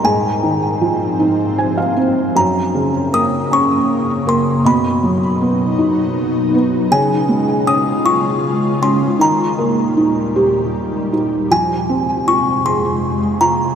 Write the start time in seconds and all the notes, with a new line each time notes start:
0.03 G#2 F3 C4 G#5
0.43 D#3
0.81 F3
1.20 D#4
1.58 G#5
1.78 F5
1.96 C4 C5
2.35 F#2 C#3 A#3 A#5
2.74 C#3
3.13 A#3 D#6
3.51 C#4 C#6
4.27 A#3 C6
4.65 B2 F#3 D#4 B5
5.03 F#3
5.41 B3
5.78 D#4
6.54 B3
6.91 C#3 G#3 F4 G#5
7.28 G#3
7.67 C#4 D#6
8.05 F4 C#6
8.82 C#4 C6
9.19 D#2 A#2 D#3 G3 A#5
9.58 A#3
9.97 D#4
10.36 G4
11.13 D#4
11.51 F2 C3 F3 G#3 G#5
11.89 C4
12.27 F4 C#6
12.65 G#4 C6
13.41 F4 A#5